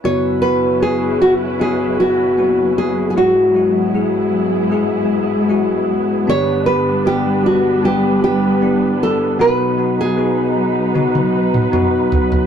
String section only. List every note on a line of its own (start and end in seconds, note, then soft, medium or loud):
0.04 6.24 F#3 medium
0.04 3.13 C#4 medium
0.04 3.13 E4 medium
0.04 3.13 B4 medium
3.15 6.24 G#2 medium
3.15 12.47 B3 medium
3.15 6.24 E4 medium
3.15 6.24 G#4 medium
6.30 9.38 G3 medium
6.30 9.38 D4 medium
6.30 9.38 B4 medium
9.39 12.47 F#3 medium
9.39 12.47 D#4 medium
9.39 12.47 B4 medium